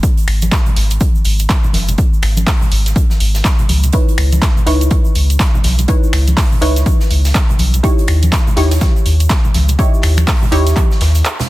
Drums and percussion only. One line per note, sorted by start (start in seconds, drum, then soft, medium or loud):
0.03 kick loud
0.03 closed hi-hat medium
0.03 closed hi-hat soft
0.03 shaker medium
0.17 closed hi-hat soft
0.17 shaker soft
0.28 finger snap medium
0.28 closed hi-hat medium
0.28 open hi-hat loud
0.42 closed hi-hat medium
0.42 high conga loud
0.42 shaker medium
0.51 kick loud
0.51 snare loud
0.51 clap loud
0.51 closed hi-hat medium
0.51 shaker medium
0.66 closed hi-hat soft
0.66 low conga medium
0.66 shaker soft
0.76 snare soft
0.76 closed hi-hat medium
0.76 open hi-hat loud
0.90 closed hi-hat soft
0.90 closed hi-hat medium
0.90 shaker medium
1.00 kick loud
1.00 closed hi-hat medium
1.00 closed hi-hat soft
1.00 high conga medium
1.00 shaker medium
1.15 shaker soft
1.25 closed hi-hat medium
1.25 open hi-hat loud
1.39 closed hi-hat soft
1.39 closed hi-hat medium
1.39 shaker medium
1.49 kick loud
1.49 snare loud
1.49 clap loud
1.49 closed hi-hat medium
1.49 shaker medium
1.64 low conga medium
1.64 shaker soft
1.73 snare medium
1.73 closed hi-hat medium
1.73 open hi-hat loud
1.73 high conga loud
1.88 closed hi-hat medium
1.88 low conga medium
1.88 shaker medium
1.98 kick loud
1.98 closed hi-hat medium
1.98 closed hi-hat soft
1.98 shaker medium
2.13 shaker soft
2.22 finger snap medium
2.22 snare soft
2.22 closed hi-hat medium
2.22 open hi-hat loud
2.37 closed hi-hat medium
2.37 high conga medium
2.37 shaker medium
2.47 kick loud
2.47 snare loud
2.47 clap loud
2.47 closed hi-hat soft
2.47 open hi-hat medium
2.47 shaker medium
2.61 low conga medium
2.61 shaker soft
2.72 closed hi-hat medium
2.72 open hi-hat loud
2.86 snare soft
2.86 closed hi-hat medium
2.86 shaker medium
2.96 kick loud
2.96 closed hi-hat medium
2.96 closed hi-hat soft
2.96 high conga medium
2.96 shaker medium
3.10 snare soft
3.10 shaker soft
3.20 closed hi-hat medium
3.20 open hi-hat loud
3.35 snare soft
3.35 open hi-hat medium
3.35 shaker medium
3.45 kick loud
3.45 snare loud
3.45 clap loud
3.45 closed hi-hat soft
3.45 closed hi-hat medium
3.45 shaker medium
3.59 closed hi-hat soft
3.59 low conga medium
3.59 shaker soft
3.69 closed hi-hat medium
3.69 open hi-hat loud
3.69 high conga medium
3.83 closed hi-hat medium
3.83 low conga medium
3.83 shaker medium
3.93 kick loud
3.93 closed hi-hat medium
3.93 closed hi-hat soft
3.93 shaker medium
4.09 closed hi-hat soft
4.09 shaker soft
4.18 finger snap medium
4.18 closed hi-hat medium
4.18 open hi-hat loud
4.32 closed hi-hat medium
4.32 high conga medium
4.32 shaker medium
4.42 kick loud
4.42 snare loud
4.42 clap loud
4.42 closed hi-hat medium
4.42 shaker medium
4.57 closed hi-hat soft
4.57 low conga medium
4.57 shaker soft
4.66 snare soft
4.66 closed hi-hat medium
4.66 open hi-hat loud
4.81 closed hi-hat soft
4.81 closed hi-hat medium
4.81 shaker medium
4.91 kick loud
4.91 closed hi-hat medium
4.91 closed hi-hat soft
4.91 high conga medium
4.91 shaker medium
5.05 shaker soft
5.15 closed hi-hat medium
5.15 open hi-hat loud
5.30 closed hi-hat medium
5.30 closed hi-hat soft
5.30 shaker medium
5.39 kick loud
5.39 snare loud
5.39 clap loud
5.39 closed hi-hat soft
5.39 closed hi-hat loud
5.39 shaker medium
5.54 low conga medium
5.54 shaker soft
5.64 snare medium
5.64 closed hi-hat medium
5.64 open hi-hat loud
5.64 high conga medium
5.79 closed hi-hat medium
5.79 low conga medium
5.79 shaker medium
5.88 kick loud
5.88 closed hi-hat medium
5.88 shaker medium
6.03 shaker soft
6.13 finger snap medium
6.13 snare soft
6.13 closed hi-hat medium
6.13 open hi-hat loud
6.27 closed hi-hat medium
6.27 high conga medium
6.27 shaker medium
6.37 kick loud
6.37 snare loud
6.37 clap loud
6.37 closed hi-hat medium
6.37 open hi-hat medium
6.37 shaker medium
6.52 low conga medium
6.52 shaker soft
6.62 closed hi-hat medium
6.62 open hi-hat loud
6.76 snare soft
6.76 closed hi-hat medium
6.76 shaker medium
6.86 kick loud
6.86 closed hi-hat medium
6.86 high conga medium
6.86 shaker medium
7.00 snare soft
7.00 shaker soft
7.11 closed hi-hat medium
7.11 open hi-hat medium
7.25 snare soft
7.25 open hi-hat medium
7.25 shaker medium
7.35 kick loud
7.35 snare loud
7.35 clap loud
7.35 closed hi-hat medium
7.35 shaker medium
7.49 closed hi-hat soft
7.49 low conga medium
7.49 shaker soft
7.59 closed hi-hat medium
7.59 open hi-hat loud
7.59 high conga medium
7.74 closed hi-hat medium
7.74 low conga medium
7.74 shaker medium
7.84 kick loud
7.84 closed hi-hat medium
7.84 shaker medium
7.98 closed hi-hat soft
7.98 shaker soft
8.08 finger snap medium
8.08 closed hi-hat medium
8.08 open hi-hat loud
8.23 closed hi-hat medium
8.23 high conga medium
8.23 shaker medium
8.32 kick loud
8.32 snare loud
8.32 clap loud
8.32 closed hi-hat loud
8.32 closed hi-hat medium
8.32 shaker medium
8.47 closed hi-hat soft
8.47 low conga medium
8.47 shaker soft
8.57 snare loud
8.57 closed hi-hat medium
8.57 open hi-hat loud
8.71 snare loud
8.71 closed hi-hat medium
8.71 shaker medium
8.81 kick loud
8.81 snare loud
8.81 closed hi-hat medium
8.81 high conga medium
8.81 shaker medium
8.96 shaker soft
9.06 closed hi-hat medium
9.06 open hi-hat medium
9.20 closed hi-hat soft
9.20 closed hi-hat medium
9.20 shaker medium
9.29 kick loud
9.29 snare loud
9.29 clap loud
9.29 closed hi-hat loud
9.29 closed hi-hat medium
9.29 shaker medium
9.44 low conga medium
9.44 shaker soft
9.54 snare soft
9.54 closed hi-hat medium
9.54 open hi-hat loud
9.54 high conga medium
9.69 closed hi-hat medium
9.69 low conga medium
9.69 shaker medium
9.79 kick loud
9.79 closed hi-hat medium
9.79 shaker medium
9.94 shaker soft
10.02 finger snap medium
10.02 snare soft
10.02 closed hi-hat medium
10.02 open hi-hat loud
10.17 finger snap medium
10.17 closed hi-hat medium
10.17 high conga medium
10.17 shaker medium
10.27 kick loud
10.27 snare loud
10.27 clap loud
10.27 closed hi-hat medium
10.27 open hi-hat medium
10.27 shaker medium
10.43 low conga loud
10.43 shaker soft
10.52 closed hi-hat medium
10.52 open hi-hat loud
10.67 snare soft
10.67 closed hi-hat medium
10.67 shaker medium
10.76 kick loud
10.76 clap medium
10.76 closed hi-hat medium
10.76 high conga medium
10.76 shaker medium
10.91 snare soft
10.91 shaker soft
11.01 snare loud
11.01 closed hi-hat medium
11.01 open hi-hat medium
11.15 closed hi-hat soft
11.15 open hi-hat medium
11.15 shaker medium
11.25 clap loud
11.25 closed hi-hat medium
11.25 shaker medium
11.39 snare loud
11.39 closed hi-hat medium
11.39 low conga medium
11.39 shaker soft